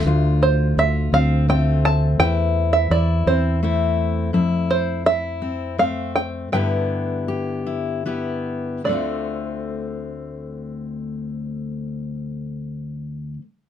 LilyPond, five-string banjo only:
\new Staff \with { instrumentName = "Five-string banjo" } { \time 6/8 \key d \dorian \tempo 4. = 54 r8 c''8 e''8 f''8 g''8 a''8 | g''8. e''16 d''8 c''4 r8 | r8 c''8 e''4 f''8 g''8 | g''2 r4 |
d''2.~ | d''2. | }